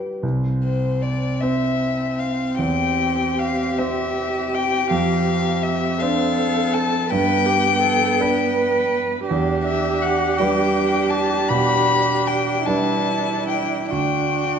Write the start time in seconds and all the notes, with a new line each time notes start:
Already playing: G3 G4 B4 D5
0.23 C2 C4
0.64 C5
1.02 D5
1.40 C4 C5 E5
2.19 F5
2.59 E2 G4 G5
3.38 F5
3.78 C4 C5 E5
4.55 G5
4.90 F2 C4 F5
5.63 E5
5.98 D4 A4 F5
6.02 C5
6.74 A5
7.09 G2 B3 B4 G5
7.46 G4
7.82 A4
8.20 D4 B4
9.28 E2 D4 G4
9.64 E5
10.02 F#5
10.38 G3 D4 B4 G5
11.10 A5
11.48 B2 B5
12.27 G5
12.64 G3 D4 E4 B4 A5
13.48 G5
13.90 D2 D4 F#4 G5